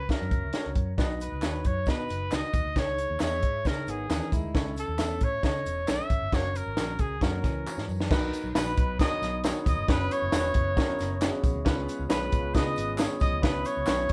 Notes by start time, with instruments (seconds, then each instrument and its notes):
Already playing: trumpet B4
0.09 upright piano C#4 F#4 A#4 E5, trumpet A#4, kick, snare, closed hi-hat
0.21 fingered electric bass F#2
0.31 fingered electric bass F#1, kick, closed hi-hat
0.44 fingered electric bass C#2
0.53 upright piano C#4 F#4 A4 C#5, snare, closed hi-hat
0.60 upright piano A#4
0.66 fingered electric bass C#2
0.75 fingered electric bass F#2, kick, closed hi-hat
0.97 fingered electric bass B1, upright piano D#4 F#4 B4 D5, kick, snare, closed hi-hat, tambourine
1.03 upright piano D#5
1.20 trumpet B4, closed hi-hat, tambourine
1.32 fingered electric bass C#2
1.41 fingered electric bass D#2, upright piano D#4 F#4 B4 C#5, snare, clap, closed hi-hat, tambourine
1.65 fingered electric bass F#2, trumpet C#5, kick, closed hi-hat
1.86 fingered electric bass B2, upright piano D#4 F#4 B4 D#5, kick, snare, closed hi-hat, tambourine
1.90 trumpet B4
2.09 fingered electric bass F#1, closed hi-hat, tambourine
2.31 fingered electric bass C#2, upright piano D#4 F#4 B4 D#5, trumpet D#5, snare, clap, closed hi-hat, tambourine
2.53 fingered electric bass D#2, kick, closed hi-hat, tambourine
2.65 fingered electric bass D2
2.76 fingered electric bass C#2, upright piano D#4 E4 G#4 C#5, trumpet C#5, kick, snare, closed hi-hat, tambourine
2.98 closed hi-hat, tambourine
3.10 fingered electric bass D#2
3.20 fingered electric bass E2, upright piano E4 G#4 D#5 E5, trumpet C#5, snare, clap, closed hi-hat, tambourine
3.43 fingered electric bass G#2, kick, closed hi-hat
3.65 fingered electric bass C#3, upright piano D#4 E4 G#4 C#5, trumpet A#4, kick, snare, closed hi-hat, tambourine
3.87 fingered electric bass G#1, clean electric guitar D#3 B3, trumpet G#4, closed hi-hat, tambourine
4.09 fingered electric bass D#2, clean electric guitar E3 C#4, upright piano D#4 E4 G#4 A#4, snare, clap, closed hi-hat, tambourine
4.32 fingered electric bass D#2, clean electric guitar G#3 E4, kick, closed hi-hat, tambourine
4.43 fingered electric bass D2
4.54 fingered electric bass C#2, upright piano C#4 E4 A4 C#5, kick, snare, closed hi-hat, tambourine
4.76 trumpet A4, closed hi-hat, tambourine
4.88 fingered electric bass D#2
4.98 fingered electric bass E2, upright piano C#4 E4 A4 E5, snare, clap, closed hi-hat, tambourine
5.21 fingered electric bass A2, trumpet C#5, kick, closed hi-hat, tambourine
5.43 fingered electric bass C#3, upright piano C#4 E4 A4 D#5, trumpet C#5, kick, snare, closed hi-hat, tambourine
5.66 fingered electric bass E1, closed hi-hat, tambourine
5.87 fingered electric bass B1, upright piano C#4 E4 A4 C#5, trumpet E5, snare, clap, closed hi-hat, tambourine
6.10 fingered electric bass G#1, kick, closed hi-hat, tambourine
6.21 fingered electric bass G1
6.32 fingered electric bass F#1, horn section A#3 F#4 C#5, upright piano C#4 F#4 A#4 C#5, trumpet C#5, kick, snare, closed hi-hat
6.55 trumpet A#4, closed hi-hat, tambourine
6.66 fingered electric bass G#1
6.77 fingered electric bass A#1, upright piano C#4 F#4 A#4 C#5, snare, clap, closed hi-hat, tambourine
6.99 fingered electric bass C#2, clean electric guitar G#4, trumpet G#4, kick, closed hi-hat, tambourine
7.21 fingered electric bass F#2, clean electric guitar A#3 F#4, upright piano C#4 F#4 A4 C#5, trumpet A#4, kick, snare, closed hi-hat, tambourine
7.28 upright piano A#4
7.44 fingered electric bass C#2, clean electric guitar E3 C#4, kick, snare, closed hi-hat, tambourine
7.66 upright piano C#4 F#4 A#4 C5, muted fingered electric bass stroke, clap, tambourine
7.72 upright piano C#5
7.77 fingered electric bass G#2, snare
7.88 fingered electric bass F#2, tambourine
8.00 snare
8.10 fingered electric bass B1, french horn section F#3 B3 D#4, upright piano D#4 F#4 A#4 B4, kick, snare, crash
8.33 closed hi-hat, tambourine
8.44 fingered electric bass B1
8.55 fingered electric bass A#1, upright piano D#4 F#4 B4, trumpet B4, glockenspiel B5, snare, clap, closed hi-hat, tambourine
8.77 fingered electric bass B1, kick, closed hi-hat
8.99 upright piano D#4 F#4 A#4 C#5, trumpet D#5, glockenspiel D#6, kick, snare, closed hi-hat, tambourine
9.11 muted fingered electric bass stroke
9.22 fingered electric bass B1, snare, closed hi-hat, tambourine
9.44 upright piano D#4 F#4 A#4 C#5, snare, clap, closed hi-hat, tambourine
9.66 fingered electric bass D#2, trumpet D#5, glockenspiel D#6, kick, closed hi-hat, tambourine
9.77 fingered electric bass G1
9.87 fingered electric bass F#1, french horn section C#4 E4, upright piano C#4 E4 F#4 B4, trumpet B4, glockenspiel B5, kick, snare, closed hi-hat, tambourine
10.11 trumpet C#5, glockenspiel C#6, closed hi-hat, tambourine
10.22 fingered electric bass F#1
10.32 fingered electric bass E1, upright piano C#4 E4 F#4 A#4, snare, clap, closed hi-hat, tambourine
10.39 upright piano B4
10.54 fingered electric bass F#1, kick, closed hi-hat
10.76 upright piano C#4 E4 F#4 A#4, kick, snare, closed hi-hat, tambourine
10.89 muted fingered electric bass stroke
10.99 fingered electric bass F#1, snare, closed hi-hat, tambourine
11.21 upright piano C#4 E4 F#4 G#4, snare, clap, closed hi-hat, tambourine
11.43 fingered electric bass A#1, kick, closed hi-hat, tambourine
11.55 fingered electric bass D2
11.65 fingered electric bass C#2, french horn section G#3 F4, upright piano C#4 F4 G#4 B4, kick, snare, closed hi-hat
11.88 closed hi-hat, tambourine
11.99 fingered electric bass C#2
12.09 fingered electric bass B1, upright piano C#4 F4 G#4 B4, trumpet B4, glockenspiel B5, snare, clap, closed hi-hat, tambourine
12.32 fingered electric bass C#2, kick, closed hi-hat, tambourine
12.54 fingered electric bass C#3, upright piano C#4 F4 G#4 B4, trumpet D#5, glockenspiel D#6, kick, snare, closed hi-hat, tambourine
12.76 fingered electric bass G#1, closed hi-hat, tambourine
12.98 upright piano C#4 F4 G#4 C#5, snare, clap, closed hi-hat, tambourine
13.20 fingered electric bass B1, trumpet D#5, glockenspiel D#6, kick, closed hi-hat, tambourine
13.32 fingered electric bass D2
13.42 fingered electric bass C#2, french horn section F#3 E4, upright piano C#4 E4 F#4 B4, trumpet B4, glockenspiel B5, kick, snare, closed hi-hat, tambourine
13.65 trumpet C#5, glockenspiel C#6, closed hi-hat, tambourine
13.77 fingered electric bass C#2
13.86 fingered electric bass B1, upright piano C#4 E4 F#4 B4, snare, clap, closed hi-hat, tambourine
14.09 closed hi-hat